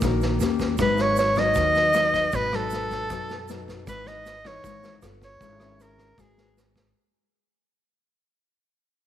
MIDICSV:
0, 0, Header, 1, 5, 480
1, 0, Start_track
1, 0, Key_signature, 5, "minor"
1, 0, Tempo, 385109
1, 982, Time_signature, 4, 2, 24, 8
1, 11304, End_track
2, 0, Start_track
2, 0, Title_t, "Soprano saxophone"
2, 0, Program_c, 0, 64
2, 1020, Note_on_c, 0, 71, 80
2, 1262, Note_on_c, 0, 73, 91
2, 1281, Note_off_c, 0, 71, 0
2, 1472, Note_off_c, 0, 73, 0
2, 1479, Note_on_c, 0, 73, 97
2, 1738, Note_on_c, 0, 75, 109
2, 1756, Note_off_c, 0, 73, 0
2, 2932, Note_on_c, 0, 71, 87
2, 2950, Note_off_c, 0, 75, 0
2, 3185, Note_on_c, 0, 69, 92
2, 3204, Note_off_c, 0, 71, 0
2, 4604, Note_off_c, 0, 69, 0
2, 4846, Note_on_c, 0, 71, 86
2, 5080, Note_on_c, 0, 75, 93
2, 5099, Note_off_c, 0, 71, 0
2, 5576, Note_on_c, 0, 73, 97
2, 5594, Note_off_c, 0, 75, 0
2, 6182, Note_off_c, 0, 73, 0
2, 6536, Note_on_c, 0, 73, 88
2, 7251, Note_on_c, 0, 70, 75
2, 7270, Note_off_c, 0, 73, 0
2, 7734, Note_on_c, 0, 68, 73
2, 7753, Note_off_c, 0, 70, 0
2, 8198, Note_off_c, 0, 68, 0
2, 11304, End_track
3, 0, Start_track
3, 0, Title_t, "Nylon-string guitar"
3, 0, Program_c, 1, 24
3, 40, Note_on_c, 1, 51, 48
3, 49, Note_on_c, 1, 58, 55
3, 50, Note_on_c, 1, 63, 53
3, 56, Note_on_c, 1, 66, 53
3, 59, Note_on_c, 1, 70, 61
3, 475, Note_off_c, 1, 58, 0
3, 478, Note_off_c, 1, 63, 0
3, 480, Note_off_c, 1, 66, 0
3, 482, Note_off_c, 1, 70, 0
3, 488, Note_off_c, 1, 51, 0
3, 517, Note_on_c, 1, 58, 56
3, 527, Note_on_c, 1, 61, 47
3, 530, Note_on_c, 1, 67, 54
3, 951, Note_off_c, 1, 58, 0
3, 956, Note_off_c, 1, 67, 0
3, 957, Note_off_c, 1, 61, 0
3, 975, Note_on_c, 1, 44, 52
3, 982, Note_on_c, 1, 54, 51
3, 984, Note_on_c, 1, 59, 53
3, 992, Note_on_c, 1, 63, 53
3, 1664, Note_off_c, 1, 54, 0
3, 1664, Note_off_c, 1, 59, 0
3, 1668, Note_off_c, 1, 63, 0
3, 1707, Note_on_c, 1, 54, 58
3, 1714, Note_on_c, 1, 59, 64
3, 1714, Note_on_c, 1, 63, 61
3, 1914, Note_off_c, 1, 44, 0
3, 1958, Note_on_c, 1, 51, 51
3, 2387, Note_off_c, 1, 54, 0
3, 2389, Note_off_c, 1, 59, 0
3, 2389, Note_off_c, 1, 63, 0
3, 2432, Note_on_c, 1, 54, 54
3, 2439, Note_on_c, 1, 59, 51
3, 2447, Note_on_c, 1, 63, 54
3, 2869, Note_off_c, 1, 54, 0
3, 2872, Note_off_c, 1, 59, 0
3, 2876, Note_off_c, 1, 63, 0
3, 2886, Note_off_c, 1, 51, 0
3, 2916, Note_on_c, 1, 47, 50
3, 2923, Note_on_c, 1, 54, 52
3, 2923, Note_on_c, 1, 59, 52
3, 2927, Note_on_c, 1, 63, 59
3, 3113, Note_off_c, 1, 54, 0
3, 3115, Note_off_c, 1, 59, 0
3, 3116, Note_off_c, 1, 63, 0
3, 3167, Note_on_c, 1, 54, 58
3, 3169, Note_on_c, 1, 59, 59
3, 3179, Note_on_c, 1, 63, 67
3, 3837, Note_off_c, 1, 54, 0
3, 3837, Note_off_c, 1, 59, 0
3, 3842, Note_off_c, 1, 63, 0
3, 3846, Note_off_c, 1, 47, 0
3, 3882, Note_on_c, 1, 47, 56
3, 3887, Note_on_c, 1, 54, 57
3, 3889, Note_on_c, 1, 59, 56
3, 3897, Note_on_c, 1, 63, 58
3, 4182, Note_off_c, 1, 54, 0
3, 4185, Note_off_c, 1, 59, 0
3, 4187, Note_off_c, 1, 63, 0
3, 4354, Note_on_c, 1, 54, 50
3, 4362, Note_on_c, 1, 59, 48
3, 4367, Note_on_c, 1, 63, 62
3, 4791, Note_off_c, 1, 54, 0
3, 4793, Note_off_c, 1, 59, 0
3, 4793, Note_off_c, 1, 63, 0
3, 4809, Note_off_c, 1, 47, 0
3, 4822, Note_on_c, 1, 44, 48
3, 4826, Note_on_c, 1, 52, 53
3, 4829, Note_on_c, 1, 59, 46
3, 4835, Note_on_c, 1, 63, 55
3, 5301, Note_off_c, 1, 52, 0
3, 5303, Note_off_c, 1, 59, 0
3, 5305, Note_off_c, 1, 63, 0
3, 5546, Note_on_c, 1, 52, 59
3, 5552, Note_on_c, 1, 59, 54
3, 5560, Note_on_c, 1, 63, 63
3, 5758, Note_off_c, 1, 44, 0
3, 5789, Note_on_c, 1, 44, 58
3, 6226, Note_off_c, 1, 52, 0
3, 6228, Note_off_c, 1, 59, 0
3, 6232, Note_off_c, 1, 63, 0
3, 6241, Note_off_c, 1, 44, 0
3, 6267, Note_on_c, 1, 59, 49
3, 6273, Note_on_c, 1, 65, 55
3, 6278, Note_on_c, 1, 69, 57
3, 6706, Note_off_c, 1, 59, 0
3, 6709, Note_off_c, 1, 65, 0
3, 6711, Note_off_c, 1, 69, 0
3, 6744, Note_on_c, 1, 56, 50
3, 6748, Note_on_c, 1, 61, 53
3, 6751, Note_on_c, 1, 64, 53
3, 6757, Note_on_c, 1, 70, 58
3, 6947, Note_off_c, 1, 61, 0
3, 6947, Note_off_c, 1, 64, 0
3, 6951, Note_off_c, 1, 70, 0
3, 6995, Note_on_c, 1, 61, 61
3, 7001, Note_on_c, 1, 64, 63
3, 7011, Note_on_c, 1, 70, 68
3, 7670, Note_off_c, 1, 61, 0
3, 7673, Note_off_c, 1, 64, 0
3, 7678, Note_off_c, 1, 70, 0
3, 7679, Note_off_c, 1, 56, 0
3, 7706, Note_on_c, 1, 56, 50
3, 7706, Note_on_c, 1, 59, 51
3, 7711, Note_on_c, 1, 66, 54
3, 7712, Note_on_c, 1, 70, 57
3, 8348, Note_off_c, 1, 59, 0
3, 8350, Note_off_c, 1, 66, 0
3, 8352, Note_off_c, 1, 70, 0
3, 8640, Note_off_c, 1, 56, 0
3, 11304, End_track
4, 0, Start_track
4, 0, Title_t, "Upright bass"
4, 0, Program_c, 2, 32
4, 25, Note_on_c, 2, 34, 78
4, 470, Note_off_c, 2, 34, 0
4, 499, Note_on_c, 2, 39, 87
4, 947, Note_off_c, 2, 39, 0
4, 986, Note_on_c, 2, 32, 88
4, 1894, Note_off_c, 2, 32, 0
4, 1940, Note_on_c, 2, 39, 71
4, 2851, Note_off_c, 2, 39, 0
4, 2906, Note_on_c, 2, 32, 95
4, 3814, Note_off_c, 2, 32, 0
4, 3863, Note_on_c, 2, 42, 72
4, 4773, Note_off_c, 2, 42, 0
4, 4825, Note_on_c, 2, 32, 86
4, 5733, Note_off_c, 2, 32, 0
4, 5778, Note_on_c, 2, 32, 76
4, 6226, Note_off_c, 2, 32, 0
4, 6267, Note_on_c, 2, 31, 91
4, 6711, Note_off_c, 2, 31, 0
4, 6738, Note_on_c, 2, 32, 86
4, 7650, Note_off_c, 2, 32, 0
4, 7703, Note_on_c, 2, 32, 85
4, 8612, Note_off_c, 2, 32, 0
4, 11304, End_track
5, 0, Start_track
5, 0, Title_t, "Drums"
5, 14, Note_on_c, 9, 82, 56
5, 25, Note_on_c, 9, 36, 60
5, 27, Note_on_c, 9, 37, 59
5, 27, Note_on_c, 9, 38, 23
5, 139, Note_off_c, 9, 82, 0
5, 150, Note_off_c, 9, 36, 0
5, 152, Note_off_c, 9, 37, 0
5, 152, Note_off_c, 9, 38, 0
5, 260, Note_on_c, 9, 82, 24
5, 276, Note_on_c, 9, 38, 24
5, 385, Note_off_c, 9, 82, 0
5, 401, Note_off_c, 9, 38, 0
5, 498, Note_on_c, 9, 82, 65
5, 506, Note_on_c, 9, 38, 24
5, 623, Note_off_c, 9, 82, 0
5, 630, Note_off_c, 9, 38, 0
5, 736, Note_on_c, 9, 82, 25
5, 742, Note_on_c, 9, 36, 24
5, 749, Note_on_c, 9, 38, 25
5, 861, Note_off_c, 9, 82, 0
5, 867, Note_off_c, 9, 36, 0
5, 874, Note_off_c, 9, 38, 0
5, 968, Note_on_c, 9, 82, 62
5, 983, Note_on_c, 9, 36, 57
5, 985, Note_on_c, 9, 37, 60
5, 985, Note_on_c, 9, 38, 23
5, 1093, Note_off_c, 9, 82, 0
5, 1108, Note_off_c, 9, 36, 0
5, 1110, Note_off_c, 9, 37, 0
5, 1110, Note_off_c, 9, 38, 0
5, 1216, Note_on_c, 9, 82, 26
5, 1227, Note_on_c, 9, 38, 20
5, 1341, Note_off_c, 9, 82, 0
5, 1352, Note_off_c, 9, 38, 0
5, 1450, Note_on_c, 9, 82, 64
5, 1477, Note_on_c, 9, 38, 24
5, 1574, Note_off_c, 9, 82, 0
5, 1601, Note_off_c, 9, 38, 0
5, 1686, Note_on_c, 9, 82, 24
5, 1702, Note_on_c, 9, 36, 23
5, 1709, Note_on_c, 9, 37, 53
5, 1709, Note_on_c, 9, 38, 22
5, 1810, Note_off_c, 9, 82, 0
5, 1826, Note_off_c, 9, 36, 0
5, 1834, Note_off_c, 9, 37, 0
5, 1834, Note_off_c, 9, 38, 0
5, 1923, Note_on_c, 9, 82, 59
5, 1940, Note_on_c, 9, 38, 23
5, 1942, Note_on_c, 9, 36, 54
5, 2048, Note_off_c, 9, 82, 0
5, 2065, Note_off_c, 9, 38, 0
5, 2067, Note_off_c, 9, 36, 0
5, 2178, Note_on_c, 9, 82, 25
5, 2189, Note_on_c, 9, 38, 23
5, 2303, Note_off_c, 9, 82, 0
5, 2314, Note_off_c, 9, 38, 0
5, 2412, Note_on_c, 9, 82, 66
5, 2427, Note_on_c, 9, 37, 60
5, 2427, Note_on_c, 9, 38, 23
5, 2536, Note_off_c, 9, 82, 0
5, 2552, Note_off_c, 9, 37, 0
5, 2552, Note_off_c, 9, 38, 0
5, 2664, Note_on_c, 9, 82, 25
5, 2666, Note_on_c, 9, 36, 24
5, 2670, Note_on_c, 9, 38, 22
5, 2789, Note_off_c, 9, 82, 0
5, 2791, Note_off_c, 9, 36, 0
5, 2794, Note_off_c, 9, 38, 0
5, 2890, Note_on_c, 9, 82, 63
5, 2905, Note_on_c, 9, 38, 22
5, 2907, Note_on_c, 9, 36, 55
5, 3014, Note_off_c, 9, 82, 0
5, 3029, Note_off_c, 9, 38, 0
5, 3032, Note_off_c, 9, 36, 0
5, 3141, Note_on_c, 9, 82, 24
5, 3149, Note_on_c, 9, 37, 51
5, 3149, Note_on_c, 9, 38, 21
5, 3265, Note_off_c, 9, 82, 0
5, 3274, Note_off_c, 9, 37, 0
5, 3274, Note_off_c, 9, 38, 0
5, 3368, Note_on_c, 9, 82, 59
5, 3397, Note_on_c, 9, 38, 24
5, 3493, Note_off_c, 9, 82, 0
5, 3522, Note_off_c, 9, 38, 0
5, 3624, Note_on_c, 9, 82, 25
5, 3627, Note_on_c, 9, 36, 22
5, 3632, Note_on_c, 9, 38, 21
5, 3749, Note_off_c, 9, 82, 0
5, 3752, Note_off_c, 9, 36, 0
5, 3756, Note_off_c, 9, 38, 0
5, 3859, Note_on_c, 9, 82, 60
5, 3867, Note_on_c, 9, 36, 53
5, 3867, Note_on_c, 9, 37, 55
5, 3867, Note_on_c, 9, 38, 24
5, 3984, Note_off_c, 9, 82, 0
5, 3991, Note_off_c, 9, 36, 0
5, 3991, Note_off_c, 9, 37, 0
5, 3991, Note_off_c, 9, 38, 0
5, 4100, Note_on_c, 9, 82, 25
5, 4117, Note_on_c, 9, 38, 24
5, 4225, Note_off_c, 9, 82, 0
5, 4241, Note_off_c, 9, 38, 0
5, 4340, Note_on_c, 9, 82, 64
5, 4355, Note_on_c, 9, 38, 25
5, 4465, Note_off_c, 9, 82, 0
5, 4480, Note_off_c, 9, 38, 0
5, 4588, Note_on_c, 9, 36, 22
5, 4591, Note_on_c, 9, 38, 25
5, 4598, Note_on_c, 9, 82, 25
5, 4713, Note_off_c, 9, 36, 0
5, 4716, Note_off_c, 9, 38, 0
5, 4723, Note_off_c, 9, 82, 0
5, 4826, Note_on_c, 9, 36, 59
5, 4826, Note_on_c, 9, 37, 54
5, 4826, Note_on_c, 9, 38, 24
5, 4828, Note_on_c, 9, 82, 65
5, 4951, Note_off_c, 9, 36, 0
5, 4951, Note_off_c, 9, 37, 0
5, 4951, Note_off_c, 9, 38, 0
5, 4953, Note_off_c, 9, 82, 0
5, 5062, Note_on_c, 9, 38, 20
5, 5078, Note_on_c, 9, 82, 24
5, 5186, Note_off_c, 9, 38, 0
5, 5202, Note_off_c, 9, 82, 0
5, 5307, Note_on_c, 9, 38, 25
5, 5308, Note_on_c, 9, 82, 60
5, 5431, Note_off_c, 9, 38, 0
5, 5433, Note_off_c, 9, 82, 0
5, 5543, Note_on_c, 9, 36, 23
5, 5545, Note_on_c, 9, 37, 54
5, 5545, Note_on_c, 9, 38, 21
5, 5547, Note_on_c, 9, 82, 24
5, 5668, Note_off_c, 9, 36, 0
5, 5669, Note_off_c, 9, 37, 0
5, 5669, Note_off_c, 9, 38, 0
5, 5672, Note_off_c, 9, 82, 0
5, 5783, Note_on_c, 9, 36, 58
5, 5786, Note_on_c, 9, 38, 23
5, 5787, Note_on_c, 9, 82, 61
5, 5907, Note_off_c, 9, 36, 0
5, 5911, Note_off_c, 9, 38, 0
5, 5912, Note_off_c, 9, 82, 0
5, 6022, Note_on_c, 9, 82, 26
5, 6026, Note_on_c, 9, 38, 25
5, 6147, Note_off_c, 9, 82, 0
5, 6151, Note_off_c, 9, 38, 0
5, 6255, Note_on_c, 9, 82, 64
5, 6263, Note_on_c, 9, 37, 58
5, 6263, Note_on_c, 9, 38, 25
5, 6380, Note_off_c, 9, 82, 0
5, 6388, Note_off_c, 9, 37, 0
5, 6388, Note_off_c, 9, 38, 0
5, 6501, Note_on_c, 9, 36, 25
5, 6504, Note_on_c, 9, 38, 23
5, 6508, Note_on_c, 9, 82, 25
5, 6626, Note_off_c, 9, 36, 0
5, 6629, Note_off_c, 9, 38, 0
5, 6632, Note_off_c, 9, 82, 0
5, 6739, Note_on_c, 9, 38, 23
5, 6740, Note_on_c, 9, 36, 57
5, 6746, Note_on_c, 9, 82, 62
5, 6863, Note_off_c, 9, 38, 0
5, 6865, Note_off_c, 9, 36, 0
5, 6871, Note_off_c, 9, 82, 0
5, 6978, Note_on_c, 9, 37, 53
5, 6978, Note_on_c, 9, 38, 23
5, 6985, Note_on_c, 9, 82, 24
5, 7103, Note_off_c, 9, 37, 0
5, 7103, Note_off_c, 9, 38, 0
5, 7109, Note_off_c, 9, 82, 0
5, 7219, Note_on_c, 9, 38, 23
5, 7229, Note_on_c, 9, 82, 66
5, 7343, Note_off_c, 9, 38, 0
5, 7353, Note_off_c, 9, 82, 0
5, 7455, Note_on_c, 9, 38, 22
5, 7458, Note_on_c, 9, 36, 22
5, 7479, Note_on_c, 9, 82, 25
5, 7580, Note_off_c, 9, 38, 0
5, 7583, Note_off_c, 9, 36, 0
5, 7604, Note_off_c, 9, 82, 0
5, 7701, Note_on_c, 9, 36, 61
5, 7704, Note_on_c, 9, 37, 61
5, 7704, Note_on_c, 9, 38, 24
5, 7707, Note_on_c, 9, 82, 59
5, 7826, Note_off_c, 9, 36, 0
5, 7829, Note_off_c, 9, 37, 0
5, 7829, Note_off_c, 9, 38, 0
5, 7832, Note_off_c, 9, 82, 0
5, 7946, Note_on_c, 9, 38, 25
5, 7952, Note_on_c, 9, 82, 25
5, 8071, Note_off_c, 9, 38, 0
5, 8077, Note_off_c, 9, 82, 0
5, 8188, Note_on_c, 9, 38, 22
5, 8198, Note_on_c, 9, 82, 61
5, 8312, Note_off_c, 9, 38, 0
5, 8323, Note_off_c, 9, 82, 0
5, 8421, Note_on_c, 9, 36, 24
5, 8426, Note_on_c, 9, 38, 22
5, 8434, Note_on_c, 9, 82, 25
5, 8545, Note_off_c, 9, 36, 0
5, 8551, Note_off_c, 9, 38, 0
5, 8559, Note_off_c, 9, 82, 0
5, 11304, End_track
0, 0, End_of_file